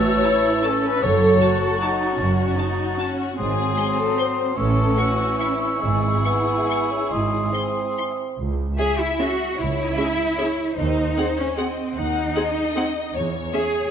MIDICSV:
0, 0, Header, 1, 9, 480
1, 0, Start_track
1, 0, Key_signature, 4, "minor"
1, 0, Tempo, 389864
1, 1264, Time_signature, 3, 2, 24, 8
1, 2694, Tempo, 398142
1, 6054, Tempo, 426743
1, 9894, Tempo, 396825
1, 16570, End_track
2, 0, Start_track
2, 0, Title_t, "Flute"
2, 0, Program_c, 0, 73
2, 0, Note_on_c, 0, 88, 60
2, 1265, Note_on_c, 0, 85, 61
2, 1284, Note_off_c, 0, 88, 0
2, 3811, Note_off_c, 0, 85, 0
2, 4129, Note_on_c, 0, 87, 58
2, 5521, Note_off_c, 0, 87, 0
2, 5566, Note_on_c, 0, 88, 60
2, 8412, Note_off_c, 0, 88, 0
2, 8465, Note_on_c, 0, 87, 43
2, 9650, Note_off_c, 0, 87, 0
2, 16570, End_track
3, 0, Start_track
3, 0, Title_t, "Oboe"
3, 0, Program_c, 1, 68
3, 0, Note_on_c, 1, 81, 63
3, 1263, Note_off_c, 1, 81, 0
3, 1270, Note_on_c, 1, 81, 54
3, 3765, Note_off_c, 1, 81, 0
3, 4137, Note_on_c, 1, 84, 60
3, 5572, Note_on_c, 1, 85, 56
3, 5590, Note_off_c, 1, 84, 0
3, 8461, Note_on_c, 1, 84, 50
3, 8478, Note_off_c, 1, 85, 0
3, 9672, Note_off_c, 1, 84, 0
3, 16570, End_track
4, 0, Start_track
4, 0, Title_t, "Violin section"
4, 0, Program_c, 2, 48
4, 289, Note_on_c, 2, 81, 56
4, 387, Note_off_c, 2, 81, 0
4, 776, Note_on_c, 2, 81, 58
4, 874, Note_off_c, 2, 81, 0
4, 1732, Note_on_c, 2, 81, 52
4, 1830, Note_off_c, 2, 81, 0
4, 2225, Note_on_c, 2, 81, 54
4, 2323, Note_off_c, 2, 81, 0
4, 3168, Note_on_c, 2, 81, 47
4, 3264, Note_off_c, 2, 81, 0
4, 3664, Note_on_c, 2, 81, 52
4, 3761, Note_off_c, 2, 81, 0
4, 4603, Note_on_c, 2, 84, 50
4, 4699, Note_off_c, 2, 84, 0
4, 5100, Note_on_c, 2, 84, 49
4, 5196, Note_off_c, 2, 84, 0
4, 6054, Note_on_c, 2, 85, 43
4, 6144, Note_off_c, 2, 85, 0
4, 6530, Note_on_c, 2, 85, 46
4, 6620, Note_off_c, 2, 85, 0
4, 7489, Note_on_c, 2, 85, 38
4, 7579, Note_off_c, 2, 85, 0
4, 7994, Note_on_c, 2, 85, 47
4, 8084, Note_off_c, 2, 85, 0
4, 8931, Note_on_c, 2, 84, 42
4, 9021, Note_off_c, 2, 84, 0
4, 9430, Note_on_c, 2, 84, 46
4, 9520, Note_off_c, 2, 84, 0
4, 10373, Note_on_c, 2, 76, 47
4, 10470, Note_off_c, 2, 76, 0
4, 10875, Note_on_c, 2, 76, 49
4, 10972, Note_off_c, 2, 76, 0
4, 11811, Note_on_c, 2, 76, 50
4, 11907, Note_off_c, 2, 76, 0
4, 12309, Note_on_c, 2, 76, 54
4, 12406, Note_off_c, 2, 76, 0
4, 13257, Note_on_c, 2, 78, 46
4, 13354, Note_off_c, 2, 78, 0
4, 13749, Note_on_c, 2, 78, 53
4, 13846, Note_off_c, 2, 78, 0
4, 14687, Note_on_c, 2, 78, 50
4, 14784, Note_off_c, 2, 78, 0
4, 15186, Note_on_c, 2, 78, 56
4, 15283, Note_off_c, 2, 78, 0
4, 16116, Note_on_c, 2, 76, 54
4, 16212, Note_off_c, 2, 76, 0
4, 16570, End_track
5, 0, Start_track
5, 0, Title_t, "Violin section"
5, 0, Program_c, 3, 48
5, 0, Note_on_c, 3, 73, 78
5, 782, Note_on_c, 3, 69, 63
5, 788, Note_off_c, 3, 73, 0
5, 1024, Note_on_c, 3, 71, 79
5, 1028, Note_off_c, 3, 69, 0
5, 1260, Note_off_c, 3, 71, 0
5, 1261, Note_on_c, 3, 73, 69
5, 1985, Note_off_c, 3, 73, 0
5, 1986, Note_on_c, 3, 69, 82
5, 2216, Note_on_c, 3, 66, 61
5, 2223, Note_off_c, 3, 69, 0
5, 4091, Note_off_c, 3, 66, 0
5, 4140, Note_on_c, 3, 68, 72
5, 4857, Note_on_c, 3, 69, 67
5, 4858, Note_off_c, 3, 68, 0
5, 5101, Note_on_c, 3, 72, 58
5, 5103, Note_off_c, 3, 69, 0
5, 5567, Note_on_c, 3, 69, 68
5, 5572, Note_off_c, 3, 72, 0
5, 6043, Note_off_c, 3, 69, 0
5, 6051, Note_on_c, 3, 66, 76
5, 6532, Note_on_c, 3, 64, 52
5, 6535, Note_off_c, 3, 66, 0
5, 7003, Note_off_c, 3, 64, 0
5, 7004, Note_on_c, 3, 68, 62
5, 9386, Note_off_c, 3, 68, 0
5, 10369, Note_on_c, 3, 76, 66
5, 11285, Note_off_c, 3, 76, 0
5, 11339, Note_on_c, 3, 73, 54
5, 11804, Note_on_c, 3, 76, 69
5, 11813, Note_off_c, 3, 73, 0
5, 12294, Note_off_c, 3, 76, 0
5, 12309, Note_on_c, 3, 73, 50
5, 12771, Note_on_c, 3, 72, 58
5, 12778, Note_off_c, 3, 73, 0
5, 13241, Note_off_c, 3, 72, 0
5, 13255, Note_on_c, 3, 72, 63
5, 13745, Note_off_c, 3, 72, 0
5, 13749, Note_on_c, 3, 75, 47
5, 14213, Note_off_c, 3, 75, 0
5, 14216, Note_on_c, 3, 78, 60
5, 14679, Note_off_c, 3, 78, 0
5, 14679, Note_on_c, 3, 75, 76
5, 15621, Note_off_c, 3, 75, 0
5, 15640, Note_on_c, 3, 73, 62
5, 16570, Note_off_c, 3, 73, 0
5, 16570, End_track
6, 0, Start_track
6, 0, Title_t, "Viola section"
6, 0, Program_c, 4, 48
6, 0, Note_on_c, 4, 66, 60
6, 288, Note_on_c, 4, 64, 66
6, 294, Note_off_c, 4, 66, 0
6, 788, Note_off_c, 4, 64, 0
6, 791, Note_on_c, 4, 61, 60
6, 1259, Note_on_c, 4, 69, 65
6, 1264, Note_off_c, 4, 61, 0
6, 1735, Note_on_c, 4, 66, 62
6, 1737, Note_off_c, 4, 69, 0
6, 2216, Note_off_c, 4, 66, 0
6, 2225, Note_on_c, 4, 63, 60
6, 2694, Note_off_c, 4, 63, 0
6, 2695, Note_on_c, 4, 61, 49
6, 3170, Note_off_c, 4, 61, 0
6, 3171, Note_on_c, 4, 63, 58
6, 3667, Note_on_c, 4, 61, 51
6, 3668, Note_off_c, 4, 63, 0
6, 4134, Note_off_c, 4, 61, 0
6, 4138, Note_on_c, 4, 60, 56
6, 5545, Note_off_c, 4, 60, 0
6, 5578, Note_on_c, 4, 61, 55
6, 6980, Note_off_c, 4, 61, 0
6, 7007, Note_on_c, 4, 64, 50
6, 9672, Note_off_c, 4, 64, 0
6, 10375, Note_on_c, 4, 61, 41
6, 10376, Note_on_c, 4, 68, 42
6, 10472, Note_off_c, 4, 61, 0
6, 10473, Note_off_c, 4, 68, 0
6, 10872, Note_on_c, 4, 61, 49
6, 10874, Note_on_c, 4, 68, 43
6, 10969, Note_off_c, 4, 61, 0
6, 10971, Note_off_c, 4, 68, 0
6, 11819, Note_on_c, 4, 61, 47
6, 11819, Note_on_c, 4, 68, 48
6, 11915, Note_off_c, 4, 68, 0
6, 11916, Note_off_c, 4, 61, 0
6, 12312, Note_on_c, 4, 68, 47
6, 12313, Note_on_c, 4, 61, 39
6, 12408, Note_off_c, 4, 68, 0
6, 12410, Note_off_c, 4, 61, 0
6, 13255, Note_on_c, 4, 68, 47
6, 13256, Note_on_c, 4, 60, 51
6, 13351, Note_off_c, 4, 68, 0
6, 13353, Note_off_c, 4, 60, 0
6, 13748, Note_on_c, 4, 60, 47
6, 13749, Note_on_c, 4, 68, 45
6, 13844, Note_off_c, 4, 60, 0
6, 13846, Note_off_c, 4, 68, 0
6, 14687, Note_on_c, 4, 68, 53
6, 14689, Note_on_c, 4, 60, 50
6, 14783, Note_off_c, 4, 68, 0
6, 14786, Note_off_c, 4, 60, 0
6, 15176, Note_on_c, 4, 68, 43
6, 15177, Note_on_c, 4, 60, 49
6, 15272, Note_off_c, 4, 68, 0
6, 15273, Note_off_c, 4, 60, 0
6, 16116, Note_on_c, 4, 61, 47
6, 16117, Note_on_c, 4, 68, 51
6, 16213, Note_off_c, 4, 61, 0
6, 16214, Note_off_c, 4, 68, 0
6, 16570, End_track
7, 0, Start_track
7, 0, Title_t, "Cello section"
7, 0, Program_c, 5, 48
7, 0, Note_on_c, 5, 45, 74
7, 213, Note_off_c, 5, 45, 0
7, 1266, Note_on_c, 5, 42, 67
7, 1658, Note_off_c, 5, 42, 0
7, 2696, Note_on_c, 5, 42, 64
7, 3088, Note_off_c, 5, 42, 0
7, 4136, Note_on_c, 5, 44, 59
7, 4523, Note_off_c, 5, 44, 0
7, 5572, Note_on_c, 5, 45, 61
7, 5970, Note_off_c, 5, 45, 0
7, 6999, Note_on_c, 5, 44, 58
7, 7403, Note_off_c, 5, 44, 0
7, 8461, Note_on_c, 5, 44, 54
7, 8851, Note_off_c, 5, 44, 0
7, 10375, Note_on_c, 5, 68, 78
7, 10606, Note_off_c, 5, 68, 0
7, 10623, Note_on_c, 5, 64, 68
7, 10869, Note_off_c, 5, 64, 0
7, 10870, Note_on_c, 5, 66, 70
7, 11336, Note_off_c, 5, 66, 0
7, 11338, Note_on_c, 5, 64, 77
7, 12776, Note_on_c, 5, 63, 72
7, 12779, Note_off_c, 5, 64, 0
7, 13491, Note_off_c, 5, 63, 0
7, 13508, Note_on_c, 5, 61, 68
7, 13755, Note_on_c, 5, 60, 59
7, 13756, Note_off_c, 5, 61, 0
7, 14225, Note_off_c, 5, 60, 0
7, 14229, Note_on_c, 5, 63, 69
7, 15649, Note_off_c, 5, 63, 0
7, 16120, Note_on_c, 5, 68, 74
7, 16570, Note_off_c, 5, 68, 0
7, 16570, End_track
8, 0, Start_track
8, 0, Title_t, "Bassoon"
8, 0, Program_c, 6, 70
8, 0, Note_on_c, 6, 52, 66
8, 1216, Note_off_c, 6, 52, 0
8, 1260, Note_on_c, 6, 54, 58
8, 3760, Note_off_c, 6, 54, 0
8, 4135, Note_on_c, 6, 54, 54
8, 5569, Note_on_c, 6, 52, 49
8, 5587, Note_off_c, 6, 54, 0
8, 6998, Note_off_c, 6, 52, 0
8, 7004, Note_on_c, 6, 56, 39
8, 7431, Note_off_c, 6, 56, 0
8, 7492, Note_on_c, 6, 59, 54
8, 8237, Note_on_c, 6, 61, 48
8, 8254, Note_off_c, 6, 59, 0
8, 8461, Note_on_c, 6, 63, 62
8, 8478, Note_off_c, 6, 61, 0
8, 8922, Note_off_c, 6, 63, 0
8, 8929, Note_on_c, 6, 60, 46
8, 9872, Note_off_c, 6, 60, 0
8, 16570, End_track
9, 0, Start_track
9, 0, Title_t, "Double bass section"
9, 0, Program_c, 7, 48
9, 0, Note_on_c, 7, 33, 65
9, 213, Note_off_c, 7, 33, 0
9, 1257, Note_on_c, 7, 30, 66
9, 1654, Note_off_c, 7, 30, 0
9, 2696, Note_on_c, 7, 30, 60
9, 3088, Note_off_c, 7, 30, 0
9, 4142, Note_on_c, 7, 32, 54
9, 4527, Note_off_c, 7, 32, 0
9, 5576, Note_on_c, 7, 33, 57
9, 5972, Note_off_c, 7, 33, 0
9, 7003, Note_on_c, 7, 32, 57
9, 7405, Note_off_c, 7, 32, 0
9, 8459, Note_on_c, 7, 32, 53
9, 8850, Note_off_c, 7, 32, 0
9, 9896, Note_on_c, 7, 37, 61
9, 10290, Note_off_c, 7, 37, 0
9, 11345, Note_on_c, 7, 37, 63
9, 11734, Note_off_c, 7, 37, 0
9, 12781, Note_on_c, 7, 39, 66
9, 13175, Note_off_c, 7, 39, 0
9, 14221, Note_on_c, 7, 39, 61
9, 14609, Note_off_c, 7, 39, 0
9, 15647, Note_on_c, 7, 40, 60
9, 16036, Note_off_c, 7, 40, 0
9, 16570, End_track
0, 0, End_of_file